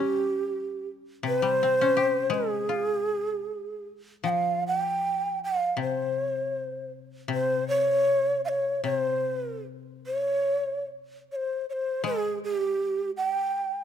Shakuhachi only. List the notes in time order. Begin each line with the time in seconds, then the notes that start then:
Already playing: G4
1.27 B4
1.41 C5
2.34 G#4
4.25 F5 G5
4.67 F#5
4.78 G5
5.44 F5
5.82 C5
7.34 C5
7.68 C#5
8.45 C#5 F5
8.84 C5
10.06 C#5
11.32 C5 C#5
11.69 C5 C#5
12.05 G#4
12.44 G4
13.17 G5